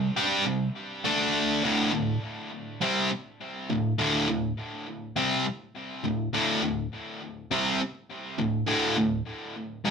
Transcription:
0.17 G3 D4 G4
0.45 C3 G3
1.05 D3 A3 D4
1.63 D2 A2 D3
1.92 D2 A2
2.81 C3 G3 C4
3.70 D2 A2
3.98 D2 A2 D3
4.28 D2 A2
5.16 C3 G3 C4
6.04 D2 A2
6.33 D2 A2 D3
6.63 D2 A2
7.51 C3 G3 C4
8.39 D2 A2
8.67 D2 A2 D3
8.96 D2 A2
9.85 G#2 D#3 G#3

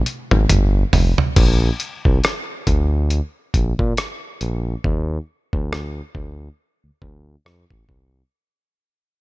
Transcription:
0.06 closed hi-hat
0.31 G#1, mid tom
0.49 G1, closed hi-hat, mid tom
0.93 F1, floor tom, open hi-hat
1.18 floor tom
1.36 A#1, kick, closed hi-hat, crash
1.80 closed hi-hat
2.05 C2, kick
2.24 cross-stick, closed hi-hat
2.67 D2, kick, closed hi-hat
3.10 closed hi-hat
3.54 A#1, kick, closed hi-hat
3.79 A#2, kick
3.97 cross-stick, closed hi-hat
4.41 A#1, closed hi-hat
4.84 D#2, kick
5.53 D2, kick
5.73 cross-stick
6.15 D2, kick
6.84 D2
7.02 D2, kick
7.45 F2, cross-stick
7.70 A1, kick
7.89 C2, kick

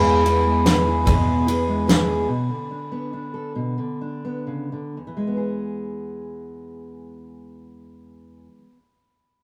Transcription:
Already playing: E2 B2 E3 G#3 B3 G#4
0.04 E3
0.24 E3 G#3 B3 G#4, ride
0.45 G#3
0.65 E3 G#3 B3 G#4, snare, ride
0.85 E3 G#3 B3 G#4
1.05 E2 B2 E3 G#3 B3 G#4, kick, ride
1.27 E3
1.46 E3 G#3 B3 G#4, ride
1.68 G#3
1.87 E3 G#3 B3 G#4, snare, ride
2.08 E3 G#3 B3 G#4
2.28 B2
2.49 D3
2.71 D4
2.92 B3
3.13 D4
3.34 A4
3.55 B2
3.78 D3
4.01 D4
4.25 B3
4.47 C#3
4.72 D3
4.97 E2
5.07 E3
5.17 G#3
5.27 B3
5.37 G#4

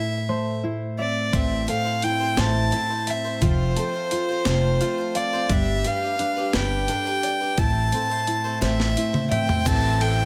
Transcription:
Already playing: A2 E4 A4 C5 E5
0.29 A3 C5
0.63 E4 C5
0.99 C4 D5 E5
1.33 A1 A2 E3 A3 C4 E4 C5 E5, kick, closed hi-hat
1.67 A3 C4 E4 A4 C5 F5, closed hi-hat
1.84 A3 C4 E4 C5
2.02 E4 G5, closed hi-hat
2.20 A3 C4 E4 C5
2.37 A1 A2 E3 A3 C4 E4 C5 A5, snare, closed hi-hat
2.71 A3 C4 E4 C5, closed hi-hat
2.89 A3 C4 E4 C5
3.07 C4 E5, closed hi-hat
3.24 A3 C4 E4 C5
3.41 F1 F3 A3 C4 F4 C5, kick, closed hi-hat
3.76 A3 C4 F4 A4 C5, closed hi-hat
3.94 C4 F4 C5
4.11 F4, closed hi-hat
4.29 C4 F4 C5
4.45 F1 F3 A3 C4 F4 C5, snare, closed hi-hat
4.81 A3 C4 F4 A4 C5, closed hi-hat
4.98 C4 F4 C5
5.15 C4 D5 F5, closed hi-hat
5.33 C4 F4 C5
5.49 G1 G3 D4 G4 B4 E5, kick, closed hi-hat
5.84 G3 D4 G4 B4 F5, closed hi-hat
6.02 D4 G4 B4
6.19 D4 B4, closed hi-hat
6.36 D4 G4 B4
6.53 G1 D4 G4 B4 G5, snare, closed hi-hat
6.88 G3 D4 G4 A4 B4, closed hi-hat
7.05 D4 G4 B4
7.23 G4 D5, closed hi-hat
7.40 D4 G4 B4
7.57 A1 A2 E3 A3 C4 E4 C5 A5, kick, closed hi-hat
7.92 A3 C4 E4 A4 C5, closed hi-hat
8.09 A3 C4 E4 C5
8.27 E4, closed hi-hat
8.44 A3 C4 E4 C5
8.61 A1 A2 E3 A3 C4 E4 C5 E5, snare, closed hi-hat
8.80 snare
8.96 A3 C4 E4 C5, closed hi-hat
9.13 A3 C4 E4 C5, mid tom
9.31 C4 E5 G5, closed hi-hat, mid tom
9.47 A3 C4 E4 C5, floor tom
9.65 A1 A2 C3 E3 A3 C4 E4 C5 A5, kick, crash, ride, shaker
10.00 A4 G5, ride

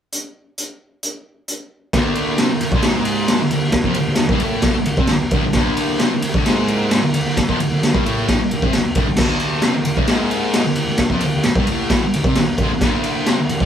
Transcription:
0.12 closed hi-hat
0.58 closed hi-hat
1.03 closed hi-hat
1.48 closed hi-hat
1.93 D2 D3, kick, snare, ride
2.15 ride
2.38 C3 C4, snare, ride
2.53 D2
2.61 D2, ride
2.72 D2 D3, kick
2.82 G#2, snare, ride
2.87 G#3
3.05 ride
3.28 snare, ride
3.42 D2
3.51 D2, ride
3.63 D2
3.72 kick, snare, ride
3.84 F2 F3, kick
3.94 D2, ride
4.09 D2
4.15 snare, ride
4.20 D2
4.29 G2 G3, kick
4.40 A2 A3, ride
4.62 kick, snare, ride
4.75 muted distorted electric guitar stroke
4.86 D2, ride
4.97 C3 C4, kick
5.07 D2, snare, ride
5.31 D2 D3, kick, ride
5.45 muted distorted electric guitar stroke
5.53 D2 D3, kick, snare, ride
5.77 ride
5.99 C3 C4, snare, ride
6.13 D2
6.22 D2, ride
6.34 D2 D3, kick
6.46 G#2 G#3, snare, ride
6.68 ride
6.91 snare, ride
7.03 D2
7.14 D2, ride
7.26 D2
7.37 kick, snare, ride
7.49 F2 F3, kick
7.60 D2, ride
7.72 D2
7.83 D2, snare, ride
7.94 G2 G3, kick
8.05 A2 A3, ride
8.28 kick, snare, ride
8.41 muted distorted electric guitar stroke
8.51 D2, ride
8.62 C3 C4, kick
8.73 D2, snare, ride
8.95 D2 D3, kick, ride
9.08 muted distorted electric guitar stroke
9.16 D2 D3, kick, snare, crash
9.40 ride
9.62 C3 C4, snare, ride
9.74 D2
9.85 D2, ride
9.97 D2 D3, kick
10.07 G#2 G#3, snare, ride
10.31 ride
10.53 snare, ride
10.65 D2
10.76 D2, ride
10.89 D2
10.97 kick, snare, ride
11.10 F2 F3, kick
11.21 ride
11.25 D2
11.36 D2
11.43 D2, snare, ride
11.56 G2 G3, kick
11.67 A2 A3, ride
11.90 kick, snare, ride
12.04 muted distorted electric guitar stroke
12.14 D2, ride
12.24 C3 C4, kick
12.35 D2, snare, ride
12.58 D2, kick, ride
12.62 D3
12.73 muted distorted electric guitar stroke
12.81 D2 D3, kick, snare, ride
13.04 ride
13.26 C3 C4, snare, ride
13.40 D2
13.49 D2, ride
13.60 D2 D3, kick

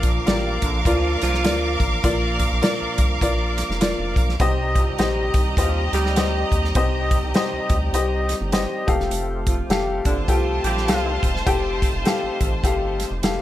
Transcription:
Already playing: A#1 A#2 F3 A#3 D4 F4 A#4 F5 D6
0.03 F3 F4, kick, closed hi-hat
0.26 A1 G3 F4 G4 A#4 D5, snare, closed hi-hat
0.62 A#1 D3 D4, kick, closed hi-hat
0.85 D2 F3 F4 A#4 D5, kick, closed hi-hat
1.22 C2 F3 F4, snare, closed hi-hat
1.34 snare
1.44 D2 F4 A#4 D5, snare, closed hi-hat
1.80 A1, kick, closed hi-hat
2.04 A#1 A#2 F4 A#4 D5, kick, closed hi-hat
2.39 kick, closed hi-hat
2.52 A#1
2.62 F4 A#4 D5, snare, closed hi-hat
2.81 C2
2.98 C2, kick, closed hi-hat
3.21 A#1 F4 A#4 D5, kick, closed hi-hat
3.58 snare, closed hi-hat
3.69 F1, snare
3.81 F4 A#4 D5, snare, closed hi-hat
3.99 F1
4.16 B1, kick, closed hi-hat
4.29 snare
4.40 C2 C3 G3 C4 D#4 G4 C5 D#5 A#5, kick, closed hi-hat
4.75 F3 F4, kick, closed hi-hat
4.99 A#1 G3 G4 C5 D#5, snare, closed hi-hat
5.34 C2 D#3 D#4, kick, closed hi-hat
5.57 D#2 F3 F4 G4 C5 D#5, kick, closed hi-hat
5.93 D2 G3 G4, snare, closed hi-hat
6.06 snare
6.16 G4 C5 D#5, snare, closed hi-hat
6.52 D#2, kick, closed hi-hat
6.64 snare
6.75 C2 C3 G4 C5 D#5, kick, closed hi-hat
7.11 kick, closed hi-hat
7.23 C2
7.34 G4 C5 D#5, snare, closed hi-hat
7.53 D2
7.70 D2, kick, closed hi-hat
7.93 C2 G4 C5 D#5, closed hi-hat
8.29 snare, closed hi-hat
8.41 G1
8.52 G4 C5 D#5, snare, closed hi-hat
8.87 F1 A3 F4 G4 A4 F5, kick, closed hi-hat
8.99 E1, snare
9.11 F1, closed hi-hat
9.47 F3 F4, kick, closed hi-hat
9.69 F1 G3 G4 A4 F5, snare, closed hi-hat
10.05 G1 D3 D4 F4 C5 A5, kick, closed hi-hat
10.28 C2 F3 F4 G4 A4 G5, kick, closed hi-hat
10.64 A#1 G3 G4, closed hi-hat
10.78 snare
10.87 C2 G4 A4 F5, snare, closed hi-hat
11.23 E1 D#4, kick, closed hi-hat
11.36 snare
11.46 F1 G4 A4 G5, kick, closed hi-hat
11.82 kick, closed hi-hat
11.94 F1
12.05 G4 A4 F5, snare, closed hi-hat
12.23 A1
12.41 A1, kick, closed hi-hat
12.63 G1 G4 A4 F5, kick, closed hi-hat
13.00 snare, closed hi-hat
13.11 F1
13.23 F1 G4 A4 F5, snare, closed hi-hat

